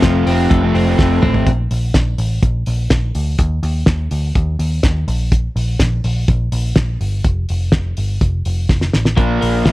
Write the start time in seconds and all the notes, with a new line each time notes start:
Already playing: F2 F3 A3 C4
0.02 F1 F3, kick, snare, closed hi-hat
0.26 F1 C3 F3 A3 C4, open hi-hat
0.50 F1 A3, kick, closed hi-hat
0.62 F2 C3 F3 A3 C4
0.74 F1 C4, open hi-hat
0.86 F3 A3 C4
0.98 F1 A3, kick, snare
1.22 A1 C4, mid tom
1.34 floor tom
1.47 A#1, kick, closed hi-hat
1.71 A#1, open hi-hat
1.94 A#1, kick, snare, closed hi-hat
2.18 A1, open hi-hat
2.43 A#1, kick, closed hi-hat
2.66 A#1, open hi-hat
2.90 A#1, kick, snare, closed hi-hat
3.15 D2, open hi-hat
3.38 D#2, kick, closed hi-hat
3.63 D#2, open hi-hat
3.86 D#2, kick, snare, closed hi-hat
4.11 D2, open hi-hat
4.35 D#2, kick, closed hi-hat
4.59 D#2, open hi-hat
4.83 D#2, kick, snare, closed hi-hat
5.08 A#1, open hi-hat
5.32 kick, closed hi-hat
5.56 A#1, open hi-hat
5.79 A#1, kick, snare, closed hi-hat
6.04 A#1, open hi-hat
6.28 A#1, kick, closed hi-hat
6.52 A#1, open hi-hat
6.76 A#1, kick, snare, closed hi-hat
7.01 G1, open hi-hat
7.24 F1, kick, closed hi-hat
7.49 F1, open hi-hat
7.72 F1, kick, snare, closed hi-hat
7.97 G1, open hi-hat
8.21 F1, kick, closed hi-hat
8.45 F1, open hi-hat
8.69 F1, kick, snare
8.81 snare
8.93 A1, snare
9.05 snare
9.17 A#1 A#2 F3 A#3 D4, kick, closed hi-hat
9.41 A#1 A#3, open hi-hat
9.65 A#1 F3, kick, snare, closed hi-hat